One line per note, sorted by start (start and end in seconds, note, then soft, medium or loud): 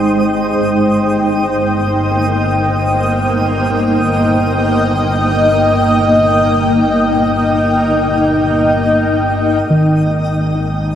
0.00 0.52 G#1 medium
0.00 0.58 G#3 medium
0.00 10.95 D#4 medium
0.00 3.58 C5 medium
0.00 10.95 G5 medium
0.00 9.66 D#6 medium
0.58 9.58 G1 medium
0.58 10.95 A#3 medium
2.95 10.95 D#5 medium
9.63 10.95 G#1 medium
9.63 10.95 G#3 medium
9.63 10.95 D#5 medium
9.70 10.95 D#3 medium